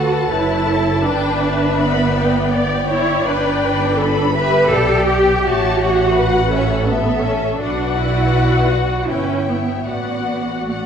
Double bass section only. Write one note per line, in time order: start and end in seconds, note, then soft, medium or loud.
0.00 0.33 D2 medium
0.32 1.04 F#1 medium
1.06 3.25 G1 medium
3.27 4.69 G1 medium
4.73 5.45 B1 medium
5.46 7.62 A1 medium
7.60 9.06 B1 medium
9.09 9.88 G1 medium
9.89 10.86 A1 medium